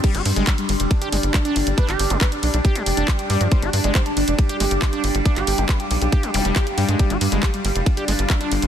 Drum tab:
CC |x---------------|----------------|----------------|----------------|
RD |x-x-x-x-x-x-x-x-|x-x-x-x-x-x-x-x-|x-x-x-x-x-x-x-x-|x-x-x-x-x-x-x-x-|
HH |xxoxxxoxxxoxxxox|xxoxxxoxxxoxxxox|xxoxxxoxxxoxxxox|xxoxxxoxxxoxxxox|
CP |----x-------x---|-x--x-------x---|----x-------x---|-x--x-------x---|
BD |o---o---o---o---|o---o---o---o---|o---o---o---o---|o---o---o---o---|

CC |----------------|
RD |x-x-x-x-x-x-x-x-|
HH |xxoxxxoxxxoxxxox|
CP |----x-------x---|
BD |o---o---o---o---|